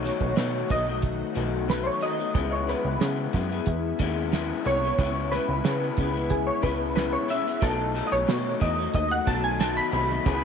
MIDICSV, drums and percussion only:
0, 0, Header, 1, 2, 480
1, 0, Start_track
1, 0, Tempo, 659196
1, 1712, Time_signature, 4, 2, 24, 8
1, 7602, End_track
2, 0, Start_track
2, 0, Title_t, "Drums"
2, 37, Note_on_c, 9, 38, 36
2, 38, Note_on_c, 9, 42, 78
2, 110, Note_off_c, 9, 38, 0
2, 111, Note_off_c, 9, 42, 0
2, 151, Note_on_c, 9, 36, 73
2, 224, Note_off_c, 9, 36, 0
2, 270, Note_on_c, 9, 38, 119
2, 272, Note_on_c, 9, 42, 112
2, 343, Note_off_c, 9, 38, 0
2, 345, Note_off_c, 9, 42, 0
2, 505, Note_on_c, 9, 42, 74
2, 513, Note_on_c, 9, 36, 97
2, 578, Note_off_c, 9, 42, 0
2, 586, Note_off_c, 9, 36, 0
2, 744, Note_on_c, 9, 42, 107
2, 752, Note_on_c, 9, 36, 91
2, 817, Note_off_c, 9, 42, 0
2, 825, Note_off_c, 9, 36, 0
2, 985, Note_on_c, 9, 42, 84
2, 1058, Note_off_c, 9, 42, 0
2, 1233, Note_on_c, 9, 42, 61
2, 1235, Note_on_c, 9, 38, 91
2, 1306, Note_off_c, 9, 42, 0
2, 1308, Note_off_c, 9, 38, 0
2, 1464, Note_on_c, 9, 42, 58
2, 1537, Note_off_c, 9, 42, 0
2, 1711, Note_on_c, 9, 36, 121
2, 1711, Note_on_c, 9, 42, 78
2, 1784, Note_off_c, 9, 36, 0
2, 1784, Note_off_c, 9, 42, 0
2, 1960, Note_on_c, 9, 42, 81
2, 2033, Note_off_c, 9, 42, 0
2, 2192, Note_on_c, 9, 38, 117
2, 2194, Note_on_c, 9, 42, 114
2, 2265, Note_off_c, 9, 38, 0
2, 2267, Note_off_c, 9, 42, 0
2, 2426, Note_on_c, 9, 42, 70
2, 2433, Note_on_c, 9, 36, 91
2, 2499, Note_off_c, 9, 42, 0
2, 2506, Note_off_c, 9, 36, 0
2, 2664, Note_on_c, 9, 42, 108
2, 2672, Note_on_c, 9, 36, 80
2, 2737, Note_off_c, 9, 42, 0
2, 2745, Note_off_c, 9, 36, 0
2, 2905, Note_on_c, 9, 42, 84
2, 2911, Note_on_c, 9, 36, 94
2, 2978, Note_off_c, 9, 42, 0
2, 2983, Note_off_c, 9, 36, 0
2, 3151, Note_on_c, 9, 42, 67
2, 3153, Note_on_c, 9, 38, 89
2, 3224, Note_off_c, 9, 42, 0
2, 3226, Note_off_c, 9, 38, 0
2, 3384, Note_on_c, 9, 42, 63
2, 3457, Note_off_c, 9, 42, 0
2, 3631, Note_on_c, 9, 36, 123
2, 3632, Note_on_c, 9, 42, 68
2, 3704, Note_off_c, 9, 36, 0
2, 3705, Note_off_c, 9, 42, 0
2, 3880, Note_on_c, 9, 38, 35
2, 3881, Note_on_c, 9, 42, 84
2, 3953, Note_off_c, 9, 38, 0
2, 3954, Note_off_c, 9, 42, 0
2, 4113, Note_on_c, 9, 38, 122
2, 4114, Note_on_c, 9, 42, 109
2, 4185, Note_off_c, 9, 38, 0
2, 4187, Note_off_c, 9, 42, 0
2, 4346, Note_on_c, 9, 42, 74
2, 4353, Note_on_c, 9, 36, 99
2, 4419, Note_off_c, 9, 42, 0
2, 4426, Note_off_c, 9, 36, 0
2, 4586, Note_on_c, 9, 42, 100
2, 4593, Note_on_c, 9, 36, 89
2, 4659, Note_off_c, 9, 42, 0
2, 4666, Note_off_c, 9, 36, 0
2, 4826, Note_on_c, 9, 42, 82
2, 4831, Note_on_c, 9, 36, 88
2, 4899, Note_off_c, 9, 42, 0
2, 4904, Note_off_c, 9, 36, 0
2, 5073, Note_on_c, 9, 42, 69
2, 5075, Note_on_c, 9, 38, 97
2, 5146, Note_off_c, 9, 42, 0
2, 5148, Note_off_c, 9, 38, 0
2, 5305, Note_on_c, 9, 42, 54
2, 5378, Note_off_c, 9, 42, 0
2, 5550, Note_on_c, 9, 36, 127
2, 5550, Note_on_c, 9, 42, 83
2, 5623, Note_off_c, 9, 36, 0
2, 5623, Note_off_c, 9, 42, 0
2, 5798, Note_on_c, 9, 42, 81
2, 5871, Note_off_c, 9, 42, 0
2, 6034, Note_on_c, 9, 38, 119
2, 6036, Note_on_c, 9, 42, 104
2, 6107, Note_off_c, 9, 38, 0
2, 6109, Note_off_c, 9, 42, 0
2, 6265, Note_on_c, 9, 42, 75
2, 6274, Note_on_c, 9, 36, 107
2, 6338, Note_off_c, 9, 42, 0
2, 6347, Note_off_c, 9, 36, 0
2, 6506, Note_on_c, 9, 42, 107
2, 6513, Note_on_c, 9, 36, 99
2, 6579, Note_off_c, 9, 42, 0
2, 6586, Note_off_c, 9, 36, 0
2, 6747, Note_on_c, 9, 42, 82
2, 6752, Note_on_c, 9, 36, 100
2, 6820, Note_off_c, 9, 42, 0
2, 6825, Note_off_c, 9, 36, 0
2, 6993, Note_on_c, 9, 42, 73
2, 6995, Note_on_c, 9, 38, 95
2, 7065, Note_off_c, 9, 42, 0
2, 7068, Note_off_c, 9, 38, 0
2, 7225, Note_on_c, 9, 42, 65
2, 7298, Note_off_c, 9, 42, 0
2, 7472, Note_on_c, 9, 36, 126
2, 7474, Note_on_c, 9, 42, 71
2, 7545, Note_off_c, 9, 36, 0
2, 7547, Note_off_c, 9, 42, 0
2, 7602, End_track
0, 0, End_of_file